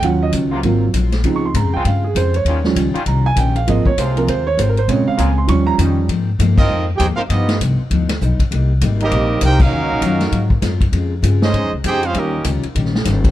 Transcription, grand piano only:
0.04 0.61 F#3 medium
0.04 0.61 C#4 soft
0.04 0.61 F4 medium
0.04 0.22 F#5 medium
0.23 0.29 D#5 medium
0.64 0.86 F#3 medium
0.64 0.86 A#3 soft
0.64 0.86 C4 soft
0.64 0.86 F4 medium
1.25 1.47 F3 medium
1.25 1.47 C4 soft
1.25 1.48 D#4 medium
1.36 1.45 C#6 medium
1.45 1.55 C6 medium
1.56 1.73 A#5 medium
1.74 1.85 G5 medium
1.86 2.03 F5 medium
2.04 2.15 G#4 medium
2.17 2.34 C5 medium
2.36 2.74 C#5 medium
2.66 2.83 F3 medium
2.66 2.84 G3 soft
2.66 2.84 C#4 medium
3.07 3.25 A#5 medium
3.26 3.37 G#5 loud
3.38 3.55 G5 medium
3.56 3.67 F5 medium
3.67 3.89 F3 medium
3.67 3.89 A#3 soft
3.67 3.90 C4 medium
3.67 3.86 D#5 medium
3.86 3.97 C#5 medium
3.99 4.16 C5 medium
4.17 4.27 F3 soft
4.17 4.27 A#3 soft
4.17 4.27 C4 soft
4.17 4.28 A#4 medium
4.29 4.46 C5 medium
4.47 4.58 C#5 loud
4.59 4.68 C5 medium
4.69 4.78 A#4 medium
4.79 4.88 C5 medium
4.88 5.46 C#3 medium
4.88 5.46 G#3 medium
4.88 5.46 C4 medium
4.88 5.07 C#5 medium
5.08 5.18 F5 medium
5.20 5.37 G#5 medium
5.38 5.49 C6 medium
5.47 6.05 F3 medium
5.47 6.06 G3 soft
5.47 6.06 C#4 medium
5.47 5.67 C#6 loud
5.67 5.74 A#5 loud

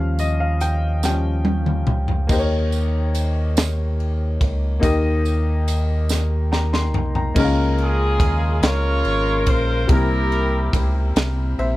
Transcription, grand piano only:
0.00 0.32 F3 medium
0.00 0.32 G3 soft
0.00 0.33 C#4 medium
0.00 0.21 F5 loud
0.19 0.41 D#5 medium
0.40 0.62 F5 medium
0.61 1.04 G5 medium
1.05 1.42 F3 soft
1.05 1.42 G3 soft
1.05 1.42 C#4 medium
1.05 2.27 G5 medium
2.27 3.53 D#3 medium
2.27 4.78 A#3 medium
2.27 4.79 D#4 medium
2.27 4.80 G4 medium
2.32 2.37 C5 medium
2.39 4.83 C#5 medium
4.80 6.05 D#3 medium
4.80 7.31 A#3 medium
4.80 7.31 D#4 medium
4.80 7.32 G4 medium
4.84 7.33 D#5 medium
6.52 6.72 G5 medium
6.52 6.72 A#5 medium
6.73 7.13 C6 medium
7.16 7.55 G5 medium
7.16 7.55 A#5 medium
7.34 8.59 C#3 medium
7.34 9.85 G#3 medium
7.34 9.85 A#3 medium
7.34 9.86 C#4 medium
7.34 7.43 D#4 medium
7.39 9.87 A#4 medium
7.44 9.90 F4 medium
9.87 11.12 C3 medium
9.87 11.77 G3 medium
9.87 11.77 A#3 medium
9.87 11.77 C4 medium
9.92 11.77 E4 medium
9.92 11.57 A#4 medium
11.59 11.77 C5 medium
11.59 11.77 E5 medium

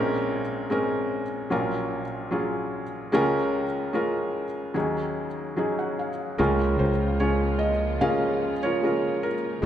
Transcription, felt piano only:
0.00 1.47 A#1 medium
0.00 1.47 A#2 medium
0.00 0.40 G#3 medium
0.00 0.41 C4 medium
0.00 0.41 C#4 medium
0.00 0.41 A#4 loud
0.70 1.21 G#3 medium
0.70 1.22 C4 medium
0.70 1.22 C#4 medium
0.70 1.22 A#4 medium
1.50 3.09 A#1 medium
1.50 3.09 A#2 medium
1.50 2.02 F#3 medium
1.50 2.02 C#4 medium
1.50 2.02 F4 medium
1.50 2.03 A#4 medium
2.31 2.82 F#3 medium
2.31 2.83 C#4 medium
2.31 2.83 F4 medium
2.31 2.83 G#4 medium
3.12 4.71 C#2 medium
3.12 4.71 C#3 medium
3.12 3.64 G#3 medium
3.12 3.64 C#4 medium
3.12 3.64 F4 medium
3.12 3.65 A#4 loud
3.93 4.45 G#3 medium
3.93 4.45 C#4 medium
3.93 4.45 F4 medium
3.93 4.46 A#4 medium
4.74 6.35 D#2 medium
4.74 6.35 D#3 medium
4.74 5.26 F#3 medium
4.74 5.26 C#4 medium
4.74 5.27 D#4 medium
4.74 5.27 G#4 medium
5.56 6.08 F#3 medium
5.56 6.09 C#4 medium
5.56 6.09 D#4 medium
5.56 6.09 G#4 medium
5.56 5.76 G#5 soft
5.79 5.97 F#5 soft
5.99 6.37 F5 soft
6.38 9.59 C#2 medium
6.38 9.59 C#3 medium
6.38 6.90 G#3 medium
6.38 6.90 C#4 medium
6.38 6.90 F4 medium
6.38 6.80 A#4 medium
6.79 7.21 C5 medium
7.20 7.71 G#3 medium
7.20 7.72 C#4 medium
7.20 7.72 F4 medium
7.20 7.58 C#5 medium
7.59 7.97 D#5 medium
8.01 8.52 G#3 medium
8.01 8.52 C#4 medium
8.01 8.53 F4 medium
8.01 9.60 G#4 medium
8.01 8.53 A#4 medium
8.01 8.58 F5 medium
8.63 8.83 F4 medium
8.63 8.83 A#4 medium
8.63 9.25 C#5 medium
8.82 9.33 G#3 medium
8.82 9.34 C#4 medium
8.82 9.34 F4 soft
8.82 9.22 A#4 medium
9.23 9.64 A#4 medium
9.62 9.65 G#3 medium

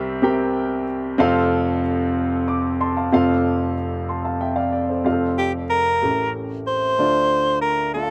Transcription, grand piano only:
0.00 1.15 C2 medium
0.00 1.15 C3 medium
0.00 0.22 C4 loud
0.00 0.23 G4 medium
0.00 0.23 A#4 medium
0.00 1.21 E5 loud
0.22 0.84 C4 medium
0.22 0.84 G4 medium
0.22 0.84 A#4 medium
0.22 0.84 G5 medium
1.18 3.08 F1 medium
1.18 3.08 F2 medium
1.18 1.80 C4 medium
1.18 1.80 F4 medium
1.18 1.81 A4 medium
1.18 1.81 F5 medium
2.48 2.78 D6 medium
2.81 2.95 A5 medium
2.81 2.95 C6 medium
2.97 3.12 F5 medium
2.97 3.27 A5 medium
3.12 5.02 F1 medium
3.12 5.02 F2 medium
3.12 3.74 C4 medium
3.12 3.74 F4 medium
3.12 3.74 A4 medium
3.12 3.74 F5 medium
4.09 4.23 A5 soft
4.09 4.24 C6 medium
4.25 4.40 F5 soft
4.25 4.40 A5 medium
4.41 4.56 E5 medium
4.41 4.56 G5 medium
4.56 4.71 D5 medium
4.56 4.72 F5 medium
4.73 4.88 D5 medium
4.89 5.11 A4 soft
4.89 5.20 C5 soft
5.04 5.98 F1 medium
5.04 5.98 F2 soft
5.04 5.67 C4 medium
5.04 5.67 F4 medium
5.04 5.12 G4 soft
5.04 5.67 F5 medium
5.12 5.71 A4 medium
6.02 6.96 A1 soft
6.02 6.96 A2 soft
6.02 6.64 A3 soft
6.02 6.64 C#4 soft
6.02 6.64 G4 soft
6.02 6.09 A4 soft
6.10 6.68 A#4 soft
6.98 8.10 D2 soft
6.98 8.10 D3 soft
6.98 7.61 A3 medium
6.98 7.61 D4 soft
6.98 7.61 F4 medium
6.98 7.62 D5 medium
7.95 8.10 A3 soft
7.95 8.10 D4 soft
7.95 8.10 F4 soft
7.95 8.04 E5 soft
8.03 8.10 F5 medium

